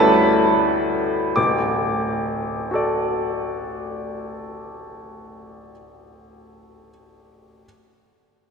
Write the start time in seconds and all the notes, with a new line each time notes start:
Already playing: D2 G3 C#4 E4 A4 B4 A5 B5
1.36 D1 A1 D6
2.71 F#4 A4
2.75 D5